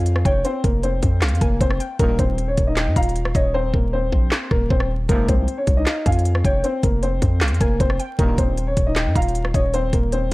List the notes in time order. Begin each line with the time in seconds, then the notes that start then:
Already playing: F2 F4 F5 G#5
0.06 closed hi-hat
0.16 cross-stick
0.25 F1 C#4 C#5 G5, kick, closed hi-hat
0.45 C4 C5, closed hi-hat
0.64 F1 A#3 A#4, kick, closed hi-hat
0.83 C4 C5, closed hi-hat
1.02 F2, kick, closed hi-hat
1.22 C2 F5, snare, clap, closed hi-hat
1.28 F2, closed hi-hat
1.35 closed hi-hat
1.41 F1 A#3 A#4 G#5, kick, closed hi-hat
1.61 F1 C4 C5, kick, closed hi-hat
1.71 cross-stick
1.80 G5, closed hi-hat
1.99 D#1 G2 A#2 D#3 A#3 A#4, kick, closed hi-hat
2.19 D#1 C4 C5, kick, closed hi-hat
2.38 closed hi-hat
2.48 C#4 C#5
2.57 D#1, kick, closed hi-hat
2.67 D#4 D#5
2.76 G5, snare, clap, closed hi-hat
2.87 G2
2.96 D#1 F4 F5 A#5, kick, closed hi-hat
3.03 closed hi-hat
3.09 closed hi-hat
3.16 closed hi-hat
3.25 cross-stick
3.35 D#1 C#4 C#5 D#5, kick, closed hi-hat
3.54 C4 C5
3.74 D#1 A#3 A#4, kick
3.93 C4 C5
4.12 A#1, kick
4.31 snare, clap
4.51 D#1 A#3 A#4, kick, cross-stick
4.70 D#1 C4 C5, kick
4.80 cross-stick
5.09 F1 G#2 C3 F3 A#3 A#4, kick, closed hi-hat
5.29 C2 C4 C5, kick, closed hi-hat
5.48 closed hi-hat
5.58 C#4 C#5
5.67 C2, kick, closed hi-hat
5.77 D#4 D#5
5.86 F5, snare, clap, closed hi-hat
6.06 F2 F4 F5 G#5, kick, closed hi-hat
6.12 closed hi-hat
6.19 closed hi-hat
6.25 closed hi-hat
6.35 cross-stick
6.45 F1 C#4 C#5 G5, kick, closed hi-hat
6.64 C4 C5, closed hi-hat
6.83 F1 A#3 A#4, kick, closed hi-hat
7.03 C4 C5, closed hi-hat
7.22 F2, kick, closed hi-hat
7.41 C2 F5, snare, clap, closed hi-hat
7.48 F2, closed hi-hat
7.54 closed hi-hat
7.61 F1 A#3 A#4 G#5, kick, closed hi-hat
7.80 F1 C4 C5, kick, closed hi-hat
7.90 cross-stick
7.99 G5, closed hi-hat
8.19 D#1 G2 A#2 D#3 A#3 A#4, kick, closed hi-hat
8.38 D#1 C4 C5, kick, closed hi-hat
8.58 closed hi-hat
8.67 C#4 C#5
8.77 D#1, kick, closed hi-hat
8.87 D#4 D#5
8.96 G5, snare, clap, closed hi-hat
9.06 G2
9.16 D#1 F4 F5 A#5, kick, closed hi-hat
9.22 closed hi-hat
9.29 closed hi-hat
9.35 closed hi-hat
9.45 cross-stick
9.54 D#1 C#4 C#5 D#5, kick, closed hi-hat
9.74 C4 C5, closed hi-hat
9.93 D#1 A#3 A#4, kick, closed hi-hat
10.12 C4 C5, closed hi-hat